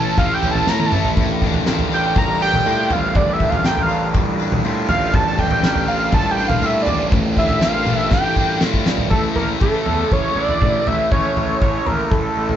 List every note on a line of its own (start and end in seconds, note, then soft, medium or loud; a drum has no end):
0.00 0.15 A1 medium
0.00 0.43 A2 medium
0.00 0.18 A3 medium
0.00 1.13 A3 medium
0.00 0.42 C#4 medium
0.00 1.13 C#4 medium
0.00 1.13 E4 medium
0.00 0.92 A4 medium
0.00 1.13 A4 medium
0.00 0.18 A5 loud
0.18 0.65 A1 medium
0.18 0.91 A3 medium
0.18 0.35 F5 medium
0.18 kick loud
0.18 floor tom medium
0.18 tambourine medium
0.34 0.52 G5 medium
0.43 1.17 C#4 medium
0.43 floor tom medium
0.43 tambourine medium
0.51 0.70 A5 loud
0.55 floor tom medium
0.67 0.91 A2 medium
0.67 1.17 E4 medium
0.67 0.88 A#5 loud
0.67 snare medium
0.67 tambourine medium
0.80 high tom medium
0.86 1.10 A5 medium
0.92 1.16 A1 medium
0.92 1.17 A3 medium
0.92 mid tom medium
0.92 tambourine medium
1.05 floor tom medium
1.17 1.64 A1 medium
1.17 2.41 A2 medium
1.17 9.08 D4 medium
1.17 9.08 F4 medium
1.17 9.08 G4 medium
1.17 9.08 A#4 medium
1.17 kick loud
1.17 floor tom medium
1.17 tambourine soft
1.42 1.92 D4 medium
1.42 kick medium
1.42 floor tom medium
1.42 tambourine soft
1.54 floor tom medium
1.66 2.13 A1 medium
1.66 3.19 A#4 medium
1.66 snare medium
1.66 tambourine medium
1.79 floor tom medium
1.92 2.41 D4 medium
1.92 2.19 G5 loud
1.92 tambourine medium
2.16 2.63 A1 medium
2.16 2.91 G3 medium
2.16 2.42 A#5 loud
2.16 kick loud
2.16 floor tom medium
2.16 tambourine medium
2.41 3.41 D4 medium
2.41 2.93 G5 loud
2.41 tambourine medium
2.54 floor tom medium
2.54 mid tom medium
2.66 2.89 A2 loud
2.66 4.18 F4 medium
2.66 tambourine medium
2.90 3.14 A1 medium
2.90 4.15 G3 medium
2.90 3.18 F5 medium
2.90 floor tom medium
2.90 tambourine medium
3.15 3.62 A1 medium
3.15 4.40 A2 medium
3.15 3.34 D5 medium
3.15 kick loud
3.15 floor tom medium
3.15 tambourine soft
3.33 3.51 E5 medium
3.40 3.91 D4 medium
3.40 kick medium
3.40 floor tom medium
3.40 tambourine soft
3.50 3.65 F5 medium
3.50 floor tom medium
3.65 4.12 A1 medium
3.65 5.17 A#4 medium
3.65 3.84 G5 medium
3.65 snare medium
3.65 tambourine medium
3.77 floor tom medium
3.82 4.07 F5 medium
3.89 4.39 D4 medium
3.89 tambourine medium
4.14 4.61 A1 medium
4.14 4.89 G3 medium
4.14 kick loud
4.14 floor tom medium
4.14 tambourine medium
4.40 5.38 D4 medium
4.40 tambourine medium
4.52 floor tom medium
4.52 mid tom medium
4.65 4.88 A2 medium
4.65 6.16 F4 medium
4.65 tambourine medium
4.89 5.13 A1 medium
4.89 6.12 G3 medium
4.89 5.16 F5 loud
4.89 floor tom medium
4.89 tambourine medium
5.14 5.61 A1 medium
5.14 6.38 A2 medium
5.14 5.41 A5 loud
5.14 kick loud
5.14 floor tom medium
5.14 tambourine soft
5.39 5.88 D4 medium
5.39 5.90 G5 loud
5.39 kick medium
5.39 floor tom medium
5.39 tambourine soft
5.51 floor tom medium
5.63 6.10 A1 medium
5.63 6.88 A#4 medium
5.63 snare medium
5.63 tambourine medium
5.75 floor tom medium
5.88 6.37 D4 medium
5.88 6.13 F5 medium
5.88 tambourine medium
6.12 6.59 A1 medium
6.12 6.87 G3 medium
6.12 6.32 A5 loud
6.12 kick loud
6.12 floor tom medium
6.12 tambourine medium
6.31 6.49 G5 medium
6.38 7.36 D4 medium
6.38 tambourine medium
6.48 6.67 F5 medium
6.48 floor tom medium
6.48 mid tom medium
6.62 6.86 A2 loud
6.62 7.87 F4 medium
6.62 6.84 E5 medium
6.62 tambourine medium
6.82 7.06 D5 medium
6.86 7.11 A1 medium
6.86 8.11 G3 medium
6.86 floor tom medium
6.86 tambourine medium
7.12 7.59 A1 medium
7.12 8.37 A2 medium
7.12 kick loud
7.12 floor tom medium
7.12 tambourine soft
7.37 7.87 D4 medium
7.37 7.61 E5 medium
7.37 kick medium
7.37 floor tom medium
7.37 tambourine soft
7.49 floor tom medium
7.61 8.09 A1 medium
7.61 8.87 A#4 medium
7.61 7.96 F5 medium
7.61 snare medium
7.61 tambourine medium
7.86 8.36 D4 medium
7.86 mid tom medium
7.86 tambourine medium
7.96 8.08 E5 medium
8.11 8.58 A1 medium
8.11 8.87 G3 medium
8.11 8.59 G5 loud
8.11 kick loud
8.11 snare medium
8.11 tambourine medium
8.36 9.12 D4 medium
8.36 kick medium
8.36 tambourine medium
8.61 8.85 A2 medium
8.61 9.12 F4 medium
8.61 snare medium
8.61 tambourine medium
8.74 kick medium
8.86 9.10 A1 medium
8.86 9.12 G3 medium
8.86 snare medium
8.86 tambourine medium
8.98 floor tom medium
9.10 9.28 A1 medium
9.10 9.61 A2 medium
9.10 12.56 C#3 medium
9.10 9.39 E3 medium
9.10 12.56 A3 medium
9.10 12.56 E4 medium
9.10 9.22 A4 medium
9.10 12.56 A4 medium
9.10 kick loud
9.10 floor tom medium
9.15 9.37 A3 medium
9.36 9.53 A1 medium
9.36 9.63 A3 medium
9.36 9.47 A#4 medium
9.36 floor tom medium
9.40 9.63 E3 medium
9.61 9.78 A1 medium
9.61 10.61 A2 medium
9.61 9.88 E3 medium
9.61 9.86 A3 medium
9.61 10.14 A4 medium
9.61 kick loud
9.86 10.03 E2 medium
9.86 10.62 E3 medium
9.86 10.63 A3 medium
9.86 floor tom medium
10.12 10.28 A1 medium
10.12 10.35 C#5 loud
10.12 kick medium
10.12 floor tom medium
10.36 10.53 A1 medium
10.36 10.89 D5 loud
10.49 floor tom medium
10.61 10.78 A1 medium
10.61 11.11 A2 medium
10.61 10.88 E3 medium
10.61 10.86 A3 medium
10.61 kick loud
10.61 mid tom medium
10.86 11.03 A1 medium
10.86 11.12 E3 medium
10.86 11.13 A3 medium
10.86 11.11 E5 loud
10.86 floor tom medium
11.12 11.28 A1 medium
11.12 11.61 A2 medium
11.12 11.38 E3 medium
11.12 11.36 A3 medium
11.12 11.58 C#5 medium
11.12 kick loud
11.12 floor tom medium
11.37 11.53 A1 medium
11.37 11.62 E3 medium
11.37 11.63 A3 medium
11.37 floor tom medium
11.61 11.78 A1 medium
11.61 12.56 A2 medium
11.61 11.88 E3 medium
11.61 11.85 A3 medium
11.61 11.88 C#5 medium
11.61 kick loud
11.86 12.03 A1 medium
11.86 12.56 E3 soft
11.86 12.56 A3 medium
11.86 12.12 A#4 medium
11.86 floor tom medium
12.10 12.28 A1 medium
12.10 12.56 A4 medium
12.10 kick medium
12.10 floor tom medium
12.37 12.53 A1 medium
12.49 floor tom medium